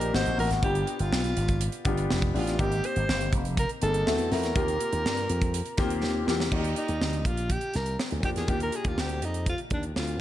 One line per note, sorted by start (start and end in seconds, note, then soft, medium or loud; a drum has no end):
0.00 0.12 A#3 medium
0.00 0.15 D4 medium
0.00 0.13 D#4 medium
0.00 0.16 G4 medium
0.00 0.17 A#4 medium
0.00 closed hi-hat medium
0.12 0.24 G#1 loud
0.12 0.33 A#3 medium
0.12 0.33 C4 medium
0.12 0.33 D#4 medium
0.12 0.33 F#4 medium
0.12 0.39 C5 loud
0.12 snare medium
0.26 0.36 A#1 loud
0.26 closed hi-hat soft
0.37 0.48 A1 medium
0.37 0.57 A#3 medium
0.37 0.57 C4 medium
0.37 0.58 D#4 medium
0.37 0.58 F#4 medium
0.37 0.50 A#4 medium
0.37 open hi-hat medium
0.50 0.61 G#1 medium
0.50 snare soft
0.50 closed hi-hat medium
0.62 0.84 G1 loud
0.62 1.40 B3 medium
0.62 1.40 D4 medium
0.62 1.40 F4 medium
0.62 1.41 G4 medium
0.62 1.02 G4 medium
0.62 kick loud
0.62 closed hi-hat medium
0.75 closed hi-hat medium
0.87 closed hi-hat medium
0.99 1.10 G1 loud
0.99 1.98 F4 medium
0.99 closed hi-hat medium
1.12 1.33 B1 medium
1.12 snare loud
1.24 closed hi-hat soft
1.37 1.68 G#1 medium
1.37 closed hi-hat medium
1.48 kick medium
1.48 closed hi-hat medium
1.61 closed hi-hat loud
1.72 closed hi-hat soft
1.85 2.06 G1 loud
1.85 2.24 B3 medium
1.85 2.24 D4 medium
1.85 2.24 F4 medium
1.85 2.25 G4 medium
1.85 kick medium
1.85 closed hi-hat medium
1.97 closed hi-hat medium
2.10 2.31 F1 medium
2.10 snare loud
2.22 kick loud
2.22 closed hi-hat soft
2.34 2.56 A1 medium
2.34 2.54 B3 medium
2.34 2.54 D4 medium
2.34 2.54 F4 medium
2.34 2.63 F4 medium
2.34 2.54 G4 medium
2.34 open hi-hat medium
2.47 snare soft
2.47 closed hi-hat medium
2.58 2.80 G#1 loud
2.58 3.36 A#3 medium
2.58 3.36 C4 medium
2.58 3.37 D#4 medium
2.58 3.37 G4 medium
2.58 2.87 G4 medium
2.58 kick loud
2.58 closed hi-hat medium
2.72 closed hi-hat soft
2.84 3.34 C5 loud
2.84 closed hi-hat medium
2.96 3.07 G#1 loud
2.96 closed hi-hat soft
3.09 3.29 G1 loud
3.09 snare loud
3.21 closed hi-hat soft
3.33 3.64 F1 medium
3.33 kick loud
3.33 closed hi-hat medium
3.45 closed hi-hat medium
3.57 3.70 A#4 loud
3.57 kick loud
3.57 closed hi-hat loud
3.69 closed hi-hat soft
3.81 4.03 G1 loud
3.81 4.06 A#3 medium
3.81 4.05 C4 medium
3.81 4.07 D#4 medium
3.81 4.07 G#4 medium
3.81 4.34 A4 loud
3.81 closed hi-hat medium
3.94 closed hi-hat soft
4.06 4.17 D2 loud
4.06 4.26 A3 medium
4.06 4.26 C4 medium
4.06 4.26 E4 medium
4.06 4.27 F#4 medium
4.06 snare loud
4.18 4.29 E2 medium
4.18 closed hi-hat soft
4.31 4.44 F2 medium
4.31 4.50 A3 medium
4.31 4.50 C4 medium
4.31 4.51 E4 medium
4.31 4.51 F#4 medium
4.31 6.28 A#4 loud
4.31 snare soft
4.31 open hi-hat medium
4.44 4.54 E2 medium
4.44 snare soft
4.44 closed hi-hat medium
4.55 4.76 D#2 loud
4.55 5.33 A#3 medium
4.55 5.33 C4 medium
4.55 5.33 F4 medium
4.55 5.33 G4 medium
4.55 kick loud
4.55 closed hi-hat medium
4.68 closed hi-hat medium
4.80 closed hi-hat medium
4.92 5.03 D#2 medium
4.92 closed hi-hat medium
5.05 5.26 G2 medium
5.05 snare loud
5.17 closed hi-hat soft
5.29 5.60 F2 medium
5.29 closed hi-hat medium
5.41 kick medium
5.41 closed hi-hat medium
5.54 closed hi-hat loud
5.65 closed hi-hat soft
5.77 5.99 D#2 loud
5.77 6.16 A#3 medium
5.77 6.17 C4 medium
5.77 6.17 F4 medium
5.77 6.17 G4 medium
5.77 kick loud
5.77 snare soft
5.77 closed hi-hat medium
5.90 closed hi-hat soft
6.03 6.23 D#2 medium
6.03 snare medium
6.27 6.48 E2 medium
6.27 6.46 A#3 medium
6.27 6.46 C4 medium
6.27 6.47 F4 medium
6.27 6.47 G4 medium
6.27 snare medium
6.40 snare loud
6.51 6.73 D#2 loud
6.51 7.29 A#3 medium
6.51 6.75 D#4 medium
6.51 7.29 F4 medium
6.51 6.58 F#4 medium
6.51 7.29 D5 medium
6.51 kick loud
6.51 crash medium
6.58 7.33 G4 medium
6.64 closed hi-hat medium
6.76 7.28 D#4 medium
6.76 closed hi-hat medium
6.88 6.99 D#2 medium
6.88 closed hi-hat medium
7.01 7.25 D2 medium
7.01 snare loud
7.13 closed hi-hat soft
7.25 7.56 A#1 medium
7.25 7.53 F4 medium
7.25 kick medium
7.25 closed hi-hat medium
7.37 closed hi-hat medium
7.50 7.77 G4 medium
7.50 kick medium
7.50 closed hi-hat loud
7.61 closed hi-hat soft
7.74 7.96 C2 medium
7.74 8.00 A#4 medium
7.74 snare soft
7.74 closed hi-hat medium
7.86 closed hi-hat medium
7.99 snare loud
8.11 8.22 D2 medium
8.11 closed hi-hat soft
8.23 8.34 F2 medium
8.23 8.43 A#3 medium
8.23 8.43 D4 medium
8.23 8.43 F4 medium
8.23 8.43 G4 medium
8.23 8.30 G4 medium
8.23 kick medium
8.23 closed hi-hat medium
8.36 8.47 E2 medium
8.36 8.51 G#4 medium
8.36 snare soft
8.36 closed hi-hat medium
8.48 8.69 D#2 loud
8.48 9.25 A#3 medium
8.48 9.26 D4 medium
8.48 9.26 F4 medium
8.48 9.26 G4 medium
8.48 8.61 G4 medium
8.48 kick loud
8.48 closed hi-hat medium
8.60 8.77 A#4 loud
8.60 closed hi-hat soft
8.72 8.90 G#4 medium
8.72 closed hi-hat medium
8.84 8.95 D#2 medium
8.84 9.02 F4 medium
8.84 kick medium
8.84 closed hi-hat medium
8.98 9.22 D2 medium
8.98 9.26 G4 loud
8.98 snare loud
9.09 closed hi-hat soft
9.22 9.53 F2 medium
9.22 9.48 D#4 medium
9.22 closed hi-hat medium
9.34 closed hi-hat medium
9.46 9.60 F4 medium
9.46 kick medium
9.46 closed hi-hat loud
9.58 closed hi-hat soft
9.70 9.92 D#2 medium
9.70 9.84 D4 medium
9.70 kick medium
9.70 closed hi-hat medium
9.83 closed hi-hat soft
9.96 10.16 D2 medium
9.96 10.21 F4 medium
9.96 snare medium
10.07 closed hi-hat soft